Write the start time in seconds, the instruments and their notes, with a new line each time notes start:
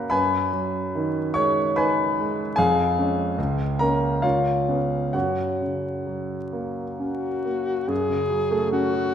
Already playing: grand piano C#3 F#3 A#3 C#4 A#4 B4 F#5 A#5 B5
0.10 grand piano F#2 B4 G#5 B5
0.53 grand piano F#3
0.95 grand piano D#3
1.34 grand piano G#3 C#5 C#6
1.76 grand piano D#4 B4 G#5 B5
2.19 grand piano G#3
2.56 grand piano F2 G#4 F5 G#5
2.98 grand piano G#3 C#4
3.38 grand piano C#2
3.79 grand piano A#3 C#4 A#4 A#5
4.22 grand piano C#2 F4 C#5 F5
4.69 grand piano B3 C#4
5.13 grand piano F#2 F#4 C#5 F#5
5.61 grand piano C#3
6.07 grand piano F#3
6.53 grand piano A#3
6.98 grand piano C#4, alto saxophone F#4
7.45 grand piano A#3
7.88 grand piano F#2, alto saxophone G#4
8.09 grand piano C#3
8.30 grand piano F#3
8.51 grand piano A3
8.72 grand piano C#4, alto saxophone F#4
8.93 grand piano F#4